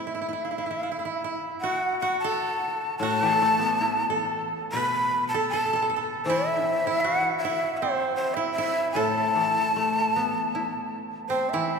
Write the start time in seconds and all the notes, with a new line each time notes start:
Already playing: A2 A3 C4 E5
0.07 E4
0.15 E4
0.22 E4
0.29 E4
0.33 E4
0.45 E4 F5
0.51 E4
0.58 E4
0.63 E4 E5
0.70 E4
0.82 E4 F5
0.91 E4
0.99 E4 E5
1.05 E4
1.24 E4
1.61 F#4 F#5
2.00 F#4 F#5
2.20 A5
2.24 A4
2.98 A2 A5
3.03 F#4
3.22 E3
3.36 A4
3.42 A3
3.59 B3
3.81 E4
4.10 A4
4.72 B2 B5
4.76 B4
5.29 A5
5.34 A4
5.49 A4 A5
5.65 A4
5.73 A4
5.82 A4
5.90 A4
5.96 A4
6.26 E3 E4 C5
6.50 E5
6.65 C4
6.87 E4
7.01 F#4 F#5
7.38 E5
7.45 E4
7.77 C5
7.82 C4
8.16 C5
8.34 E4 E5
8.52 E5
8.58 E4
8.92 A2 A5
8.96 A4
9.36 E3
9.76 A3
9.97 G#4
10.14 B3 G4
10.31 F#4
10.55 E4
11.29 C4 C5
11.50 E3 E5
11.54 E4